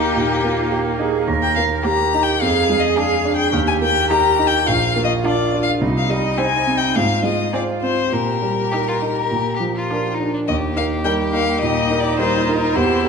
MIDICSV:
0, 0, Header, 1, 6, 480
1, 0, Start_track
1, 0, Key_signature, -3, "major"
1, 0, Tempo, 566572
1, 1086, Time_signature, 4, 2, 24, 8
1, 5898, Tempo, 586510
1, 8778, Tempo, 568720
1, 10976, End_track
2, 0, Start_track
2, 0, Title_t, "Violin"
2, 0, Program_c, 0, 40
2, 0, Note_on_c, 0, 67, 61
2, 848, Note_off_c, 0, 67, 0
2, 1205, Note_on_c, 0, 79, 59
2, 1312, Note_off_c, 0, 79, 0
2, 1318, Note_on_c, 0, 77, 66
2, 1385, Note_off_c, 0, 77, 0
2, 1561, Note_on_c, 0, 82, 66
2, 1890, Note_on_c, 0, 79, 71
2, 1902, Note_off_c, 0, 82, 0
2, 2042, Note_on_c, 0, 77, 72
2, 2054, Note_off_c, 0, 79, 0
2, 2368, Note_on_c, 0, 75, 66
2, 2380, Note_off_c, 0, 77, 0
2, 2524, Note_off_c, 0, 75, 0
2, 2529, Note_on_c, 0, 77, 63
2, 2843, Note_off_c, 0, 77, 0
2, 2847, Note_on_c, 0, 79, 69
2, 3005, Note_off_c, 0, 79, 0
2, 3111, Note_on_c, 0, 80, 65
2, 3163, Note_off_c, 0, 80, 0
2, 3246, Note_on_c, 0, 79, 74
2, 3469, Note_off_c, 0, 79, 0
2, 3474, Note_on_c, 0, 82, 71
2, 3787, Note_on_c, 0, 79, 72
2, 3800, Note_off_c, 0, 82, 0
2, 3957, Note_on_c, 0, 77, 75
2, 3970, Note_off_c, 0, 79, 0
2, 4267, Note_off_c, 0, 77, 0
2, 4272, Note_on_c, 0, 75, 65
2, 4339, Note_off_c, 0, 75, 0
2, 4450, Note_on_c, 0, 74, 60
2, 4761, Note_off_c, 0, 74, 0
2, 4766, Note_on_c, 0, 77, 70
2, 4831, Note_off_c, 0, 77, 0
2, 5061, Note_on_c, 0, 77, 56
2, 5167, Note_on_c, 0, 75, 61
2, 5180, Note_off_c, 0, 77, 0
2, 5408, Note_on_c, 0, 80, 75
2, 5421, Note_off_c, 0, 75, 0
2, 5739, Note_on_c, 0, 79, 62
2, 5751, Note_off_c, 0, 80, 0
2, 5896, Note_on_c, 0, 77, 69
2, 5908, Note_off_c, 0, 79, 0
2, 6124, Note_off_c, 0, 77, 0
2, 6129, Note_on_c, 0, 75, 56
2, 6363, Note_off_c, 0, 75, 0
2, 6377, Note_on_c, 0, 74, 51
2, 6443, Note_off_c, 0, 74, 0
2, 6607, Note_on_c, 0, 72, 56
2, 6854, Note_on_c, 0, 70, 55
2, 6866, Note_off_c, 0, 72, 0
2, 8304, Note_off_c, 0, 70, 0
2, 8778, Note_on_c, 0, 75, 51
2, 8845, Note_off_c, 0, 75, 0
2, 9020, Note_on_c, 0, 77, 55
2, 9088, Note_off_c, 0, 77, 0
2, 9253, Note_on_c, 0, 79, 58
2, 9320, Note_off_c, 0, 79, 0
2, 9496, Note_on_c, 0, 77, 66
2, 9727, Note_off_c, 0, 77, 0
2, 9732, Note_on_c, 0, 75, 61
2, 10061, Note_on_c, 0, 74, 60
2, 10074, Note_off_c, 0, 75, 0
2, 10217, Note_off_c, 0, 74, 0
2, 10222, Note_on_c, 0, 72, 59
2, 10530, Note_off_c, 0, 72, 0
2, 10535, Note_on_c, 0, 70, 54
2, 10704, Note_on_c, 0, 72, 61
2, 10716, Note_off_c, 0, 70, 0
2, 10976, Note_off_c, 0, 72, 0
2, 10976, End_track
3, 0, Start_track
3, 0, Title_t, "Violin"
3, 0, Program_c, 1, 40
3, 0, Note_on_c, 1, 63, 50
3, 1088, Note_off_c, 1, 63, 0
3, 1553, Note_on_c, 1, 67, 54
3, 1916, Note_off_c, 1, 67, 0
3, 2509, Note_on_c, 1, 68, 51
3, 2876, Note_off_c, 1, 68, 0
3, 3483, Note_on_c, 1, 67, 56
3, 3844, Note_off_c, 1, 67, 0
3, 4446, Note_on_c, 1, 65, 56
3, 4806, Note_off_c, 1, 65, 0
3, 5403, Note_on_c, 1, 67, 52
3, 5769, Note_off_c, 1, 67, 0
3, 6363, Note_on_c, 1, 68, 45
3, 6724, Note_off_c, 1, 68, 0
3, 7332, Note_on_c, 1, 67, 49
3, 7382, Note_off_c, 1, 67, 0
3, 7468, Note_on_c, 1, 65, 44
3, 7533, Note_off_c, 1, 65, 0
3, 7698, Note_on_c, 1, 70, 43
3, 8015, Note_off_c, 1, 70, 0
3, 8023, Note_on_c, 1, 67, 39
3, 8087, Note_off_c, 1, 67, 0
3, 8185, Note_on_c, 1, 65, 38
3, 8505, Note_on_c, 1, 63, 34
3, 8517, Note_off_c, 1, 65, 0
3, 8656, Note_off_c, 1, 63, 0
3, 8661, Note_on_c, 1, 62, 36
3, 8708, Note_off_c, 1, 62, 0
3, 8778, Note_on_c, 1, 67, 45
3, 10188, Note_off_c, 1, 67, 0
3, 10223, Note_on_c, 1, 65, 40
3, 10701, Note_on_c, 1, 64, 47
3, 10714, Note_off_c, 1, 65, 0
3, 10976, Note_off_c, 1, 64, 0
3, 10976, End_track
4, 0, Start_track
4, 0, Title_t, "Cello"
4, 0, Program_c, 2, 42
4, 0, Note_on_c, 2, 67, 55
4, 111, Note_on_c, 2, 63, 45
4, 123, Note_off_c, 2, 67, 0
4, 355, Note_on_c, 2, 65, 47
4, 368, Note_off_c, 2, 63, 0
4, 590, Note_off_c, 2, 65, 0
4, 595, Note_on_c, 2, 67, 48
4, 663, Note_off_c, 2, 67, 0
4, 831, Note_on_c, 2, 68, 53
4, 1079, Note_on_c, 2, 70, 56
4, 1092, Note_off_c, 2, 68, 0
4, 1551, Note_on_c, 2, 67, 56
4, 1563, Note_off_c, 2, 70, 0
4, 2035, Note_off_c, 2, 67, 0
4, 2040, Note_on_c, 2, 68, 67
4, 2987, Note_off_c, 2, 68, 0
4, 2997, Note_on_c, 2, 67, 64
4, 3946, Note_off_c, 2, 67, 0
4, 3963, Note_on_c, 2, 65, 57
4, 4935, Note_on_c, 2, 63, 59
4, 4948, Note_off_c, 2, 65, 0
4, 5896, Note_on_c, 2, 65, 53
4, 5909, Note_off_c, 2, 63, 0
4, 6363, Note_off_c, 2, 65, 0
4, 6368, Note_on_c, 2, 65, 43
4, 6841, Note_off_c, 2, 65, 0
4, 6854, Note_on_c, 2, 67, 44
4, 8510, Note_off_c, 2, 67, 0
4, 8769, Note_on_c, 2, 58, 41
4, 10662, Note_off_c, 2, 58, 0
4, 10700, Note_on_c, 2, 60, 44
4, 10976, Note_off_c, 2, 60, 0
4, 10976, End_track
5, 0, Start_track
5, 0, Title_t, "Grand piano"
5, 0, Program_c, 3, 0
5, 0, Control_c, 3, 64, 127
5, 0, Note_on_c, 3, 39, 48
5, 0, Note_on_c, 3, 58, 33
5, 0, Note_on_c, 3, 63, 37
5, 0, Note_on_c, 3, 67, 36
5, 96, Note_off_c, 3, 39, 0
5, 135, Note_on_c, 3, 46, 39
5, 278, Note_off_c, 3, 63, 0
5, 373, Note_off_c, 3, 58, 0
5, 373, Note_on_c, 3, 58, 36
5, 516, Note_off_c, 3, 46, 0
5, 602, Note_off_c, 3, 67, 0
5, 602, Note_on_c, 3, 67, 42
5, 753, Note_off_c, 3, 58, 0
5, 842, Note_on_c, 3, 63, 40
5, 986, Note_off_c, 3, 67, 0
5, 1080, Note_on_c, 3, 39, 55
5, 1083, Note_off_c, 3, 63, 0
5, 1102, Control_c, 3, 64, 0
5, 1221, Control_c, 3, 64, 127
5, 1334, Note_on_c, 3, 58, 39
5, 1578, Note_on_c, 3, 67, 41
5, 1712, Note_off_c, 3, 58, 0
5, 1816, Note_on_c, 3, 63, 40
5, 1956, Note_off_c, 3, 67, 0
5, 2013, Note_off_c, 3, 39, 0
5, 2048, Note_on_c, 3, 41, 52
5, 2051, Note_off_c, 3, 63, 0
5, 2060, Control_c, 3, 64, 0
5, 2176, Control_c, 3, 64, 127
5, 2284, Note_on_c, 3, 56, 43
5, 2519, Note_on_c, 3, 68, 42
5, 2670, Note_off_c, 3, 56, 0
5, 2754, Note_on_c, 3, 62, 42
5, 2908, Note_off_c, 3, 68, 0
5, 2981, Note_off_c, 3, 41, 0
5, 2987, Note_on_c, 3, 39, 59
5, 3002, Note_off_c, 3, 62, 0
5, 3025, Control_c, 3, 64, 0
5, 3138, Control_c, 3, 64, 127
5, 3233, Note_on_c, 3, 58, 40
5, 3478, Note_on_c, 3, 67, 42
5, 3625, Note_off_c, 3, 58, 0
5, 3720, Note_on_c, 3, 63, 46
5, 3869, Note_off_c, 3, 67, 0
5, 3931, Note_off_c, 3, 39, 0
5, 3961, Note_on_c, 3, 34, 52
5, 3966, Note_off_c, 3, 63, 0
5, 3989, Control_c, 3, 64, 0
5, 4125, Control_c, 3, 64, 127
5, 4204, Note_on_c, 3, 58, 43
5, 4438, Note_on_c, 3, 65, 47
5, 4593, Note_off_c, 3, 58, 0
5, 4683, Note_on_c, 3, 62, 41
5, 4830, Note_off_c, 3, 65, 0
5, 4899, Note_off_c, 3, 34, 0
5, 4923, Note_on_c, 3, 36, 55
5, 4928, Note_off_c, 3, 62, 0
5, 4947, Control_c, 3, 64, 0
5, 5097, Control_c, 3, 64, 127
5, 5165, Note_on_c, 3, 55, 41
5, 5407, Note_on_c, 3, 72, 40
5, 5556, Note_off_c, 3, 55, 0
5, 5651, Note_on_c, 3, 60, 40
5, 5798, Note_off_c, 3, 72, 0
5, 5865, Note_off_c, 3, 36, 0
5, 5896, Note_off_c, 3, 60, 0
5, 5897, Note_on_c, 3, 44, 49
5, 5914, Control_c, 3, 64, 0
5, 6049, Control_c, 3, 64, 127
5, 6120, Note_on_c, 3, 56, 37
5, 6370, Note_on_c, 3, 72, 36
5, 6507, Note_off_c, 3, 56, 0
5, 6605, Note_on_c, 3, 60, 35
5, 6754, Note_off_c, 3, 72, 0
5, 6822, Note_off_c, 3, 44, 0
5, 6848, Note_on_c, 3, 46, 42
5, 6850, Note_off_c, 3, 60, 0
5, 6870, Control_c, 3, 64, 0
5, 6990, Control_c, 3, 64, 127
5, 7092, Note_on_c, 3, 55, 30
5, 7343, Note_on_c, 3, 70, 33
5, 7483, Note_off_c, 3, 55, 0
5, 7583, Note_on_c, 3, 63, 30
5, 7728, Note_off_c, 3, 70, 0
5, 7792, Note_off_c, 3, 46, 0
5, 7822, Note_on_c, 3, 46, 36
5, 7824, Note_off_c, 3, 63, 0
5, 7841, Control_c, 3, 64, 0
5, 7971, Control_c, 3, 64, 127
5, 8057, Note_on_c, 3, 53, 31
5, 8312, Note_on_c, 3, 70, 32
5, 8443, Note_off_c, 3, 53, 0
5, 8546, Note_on_c, 3, 62, 31
5, 8689, Note_off_c, 3, 70, 0
5, 8750, Note_off_c, 3, 46, 0
5, 8780, Note_on_c, 3, 39, 43
5, 8781, Note_off_c, 3, 62, 0
5, 8797, Control_c, 3, 64, 0
5, 8955, Control_c, 3, 64, 127
5, 9013, Note_off_c, 3, 39, 0
5, 9016, Note_on_c, 3, 63, 29
5, 9020, Note_on_c, 3, 70, 32
5, 9234, Note_off_c, 3, 63, 0
5, 9236, Note_off_c, 3, 70, 0
5, 9252, Note_on_c, 3, 55, 31
5, 9254, Note_on_c, 3, 63, 30
5, 9255, Note_on_c, 3, 70, 32
5, 9473, Note_off_c, 3, 55, 0
5, 9474, Note_off_c, 3, 63, 0
5, 9474, Note_off_c, 3, 70, 0
5, 9497, Note_on_c, 3, 63, 29
5, 9500, Note_on_c, 3, 70, 36
5, 9716, Note_off_c, 3, 63, 0
5, 9718, Note_off_c, 3, 70, 0
5, 9741, Note_on_c, 3, 46, 37
5, 9975, Note_off_c, 3, 46, 0
5, 9979, Note_on_c, 3, 63, 33
5, 9985, Note_on_c, 3, 70, 35
5, 10196, Note_off_c, 3, 63, 0
5, 10200, Note_off_c, 3, 70, 0
5, 10216, Note_on_c, 3, 55, 36
5, 10218, Note_on_c, 3, 63, 34
5, 10222, Note_on_c, 3, 70, 37
5, 10434, Note_off_c, 3, 55, 0
5, 10435, Note_off_c, 3, 63, 0
5, 10437, Note_off_c, 3, 70, 0
5, 10467, Note_on_c, 3, 63, 33
5, 10473, Note_on_c, 3, 70, 34
5, 10680, Note_off_c, 3, 63, 0
5, 10683, Note_off_c, 3, 70, 0
5, 10694, Note_on_c, 3, 40, 49
5, 10718, Control_c, 3, 64, 0
5, 10866, Control_c, 3, 64, 127
5, 10929, Note_off_c, 3, 40, 0
5, 10936, Note_on_c, 3, 67, 36
5, 10941, Note_on_c, 3, 70, 39
5, 10976, Note_off_c, 3, 67, 0
5, 10976, Note_off_c, 3, 70, 0
5, 10976, End_track
6, 0, Start_track
6, 0, Title_t, "Viola"
6, 0, Program_c, 4, 41
6, 0, Note_on_c, 4, 58, 43
6, 1053, Note_off_c, 4, 58, 0
6, 1561, Note_on_c, 4, 58, 53
6, 1920, Note_off_c, 4, 58, 0
6, 2518, Note_on_c, 4, 62, 47
6, 2880, Note_off_c, 4, 62, 0
6, 3483, Note_on_c, 4, 63, 54
6, 3844, Note_off_c, 4, 63, 0
6, 4454, Note_on_c, 4, 62, 48
6, 4811, Note_off_c, 4, 62, 0
6, 5409, Note_on_c, 4, 60, 51
6, 5772, Note_off_c, 4, 60, 0
6, 6369, Note_on_c, 4, 60, 41
6, 6727, Note_off_c, 4, 60, 0
6, 7349, Note_on_c, 4, 63, 41
6, 7705, Note_off_c, 4, 63, 0
6, 8310, Note_on_c, 4, 62, 33
6, 8662, Note_off_c, 4, 62, 0
6, 9742, Note_on_c, 4, 63, 43
6, 10704, Note_on_c, 4, 67, 55
6, 10717, Note_off_c, 4, 63, 0
6, 10976, Note_off_c, 4, 67, 0
6, 10976, End_track
0, 0, End_of_file